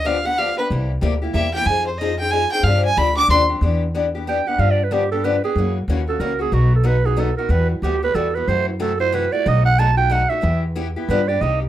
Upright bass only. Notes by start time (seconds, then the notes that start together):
Already playing: D2
0.70 C2
1.02 D2
1.34 E2
1.66 F2
2.63 G2
2.97 D2
3.28 D#2
3.61 E2
4.58 G2
5.56 F#2
5.88 D#2
6.20 C#2
6.52 B1
7.49 E2
7.82 D2
8.15 E2
8.48 F#2
9.46 B1
10.43 E2
11.09 G2
11.41 C2